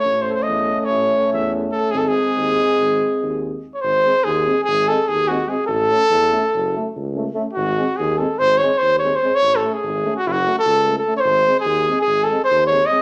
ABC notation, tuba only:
X:1
M:9/8
L:1/8
Q:3/8=97
K:none
V:1 name="Tuba" clef=bass
A,,,2 E,,2 A,,,2 E,,3 | ^G,,,2 ^D,,2 G,,,2 D,,3 | ^G,,,2 ^D,,2 G,,,2 D,,3 | A,,,2 E,,2 ^F,,,2 ^C,,3 |
^G,,,2 ^D,,2 G,,,2 D,,3 | A,,,2 ^G,,,2 ^F,,,2 ^C,,3 | ^G,,,2 ^D,,2 G,,,2 D,,3 |]